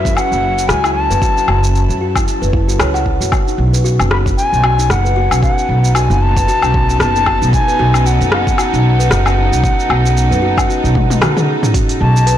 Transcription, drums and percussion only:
0.05 kick loud
0.05 cabasa medium
0.17 cabasa medium
0.17 low woodblock medium
0.32 cabasa soft
0.59 cabasa medium
0.69 cross-stick medium
0.69 cabasa medium
0.84 cabasa soft
0.84 low woodblock medium
1.11 cabasa medium
1.22 kick loud
1.22 cabasa medium
1.37 cabasa soft
1.48 low woodblock medium
1.64 cabasa medium
1.75 cabasa medium
1.90 cabasa soft
2.15 kick loud
2.15 cabasa medium
2.15 low woodblock medium
2.28 cabasa medium
2.43 cabasa soft
2.53 kick loud
2.69 cabasa medium
2.79 cross-stick medium
2.79 cabasa medium
2.79 low woodblock medium
2.95 cabasa soft
3.06 kick medium
3.22 cabasa medium
3.32 kick loud
3.32 cabasa medium
3.32 low woodblock medium
3.48 cabasa soft
3.74 cabasa medium
3.85 cabasa medium
4.00 cabasa soft
4.00 low woodblock medium
4.11 cross-stick medium
4.26 kick loud
4.26 cabasa medium
4.38 cabasa medium
4.53 cabasa soft
4.64 low woodblock medium
4.79 cabasa medium
4.90 cross-stick medium
4.90 cabasa medium
5.06 cabasa soft
5.31 cabasa medium
5.31 low woodblock medium
5.43 kick loud
5.43 cabasa soft
5.58 cabasa soft
5.85 cabasa medium
5.95 cabasa medium
5.95 low woodblock medium
6.11 cabasa soft
6.36 kick medium
6.36 cabasa medium
6.48 cabasa medium
6.62 cabasa soft
6.62 low woodblock medium
6.74 kick medium
6.90 cabasa medium
7.00 cross-stick medium
7.00 cabasa medium
7.16 cabasa soft
7.26 kick medium
7.26 low woodblock medium
7.42 cabasa medium
7.53 kick loud
7.53 cabasa medium
7.69 cabasa soft
7.94 cabasa medium
7.94 low woodblock medium
8.06 cabasa soft
8.21 cabasa soft
8.32 cross-stick medium
8.47 kick loud
8.47 cabasa medium
8.58 cabasa medium
8.58 low woodblock medium
8.74 cabasa soft
9.00 cabasa medium
9.11 cross-stick medium
9.11 cabasa medium
9.26 cabasa soft
9.26 low woodblock medium
9.53 cabasa medium
9.64 kick loud
9.64 cabasa medium
9.80 cabasa soft
9.90 low woodblock medium
10.06 cabasa medium
10.17 cabasa soft
10.32 cabasa soft
10.57 kick loud
10.57 cabasa medium
10.57 low woodblock medium
10.70 cabasa medium
10.85 cabasa soft
10.95 kick medium
10.95 high tom medium
11.10 high tom medium
11.10 cabasa medium
11.22 cross-stick medium
11.22 mid tom medium
11.22 cabasa medium
11.22 low woodblock medium
11.37 mid tom medium
11.37 cabasa soft
11.63 mid tom medium
11.63 cabasa medium
11.74 kick loud
11.74 open hi-hat medium
11.74 cabasa medium
11.89 open hi-hat soft
11.89 cabasa soft
12.17 cabasa medium
12.27 open hi-hat medium
12.27 cabasa medium

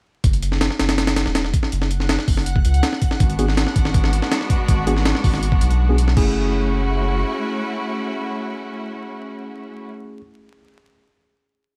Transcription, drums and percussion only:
0.24 kick loud
0.24 closed hi-hat loud
0.33 closed hi-hat soft
0.42 closed hi-hat medium
0.52 snare soft
0.61 snare loud
0.61 closed hi-hat medium
0.70 snare medium
0.79 snare loud
0.79 closed hi-hat medium
0.89 snare loud
0.89 closed hi-hat medium
0.98 snare loud
0.98 closed hi-hat medium
1.07 snare loud
1.07 closed hi-hat medium
1.16 snare loud
1.16 closed hi-hat medium
1.26 snare medium
1.35 snare loud
1.35 closed hi-hat medium
1.45 snare soft
1.54 kick loud
1.54 closed hi-hat medium
1.63 snare soft
1.72 closed hi-hat medium
1.82 snare medium
1.91 closed hi-hat medium
2.00 snare soft
2.09 snare loud
2.09 closed hi-hat medium
2.19 snare medium
2.28 kick medium
2.28 open hi-hat medium
2.37 snare soft
2.46 closed hi-hat medium
2.56 kick medium
2.65 closed hi-hat medium
2.74 closed hi-hat soft
2.83 snare loud
2.83 closed hi-hat medium
2.93 snare soft
3.02 kick medium
3.02 closed hi-hat medium
3.11 snare medium
3.20 kick loud
3.20 closed hi-hat medium
3.30 closed hi-hat soft
3.39 closed hi-hat medium
3.48 snare soft
3.57 snare loud
3.57 closed hi-hat medium
3.67 snare medium
3.76 kick medium
3.76 closed hi-hat medium
3.85 snare medium
3.94 kick loud
3.94 closed hi-hat medium
4.04 snare medium
4.13 closed hi-hat medium
4.22 snare medium
4.31 snare loud
4.31 closed hi-hat medium
4.41 snare soft
4.50 kick medium
4.50 closed hi-hat medium
4.68 kick loud
4.68 closed hi-hat medium
4.87 closed hi-hat medium
4.96 snare soft
5.05 snare loud
5.05 closed hi-hat medium
5.15 snare medium
5.24 kick loud
5.24 open hi-hat medium
5.34 snare soft
5.43 closed hi-hat medium
5.52 kick medium
5.61 closed hi-hat medium
5.71 closed hi-hat soft
5.98 closed hi-hat medium
6.08 snare soft
6.17 kick loud
6.17 crash medium

